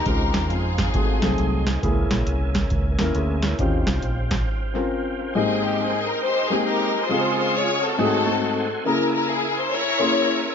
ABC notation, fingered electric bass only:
X:1
M:4/4
L:1/8
Q:"Swing" 1/4=137
K:Ab
V:1 name="Fingered electric bass" clef=bass
D,, E,, F,,2 A,,, C,, C,,2 | D,, B,,, C,,2 D,, E,, =D,,2 | E,, C,, B,,,2 z4 | z8 |
z8 | z8 |]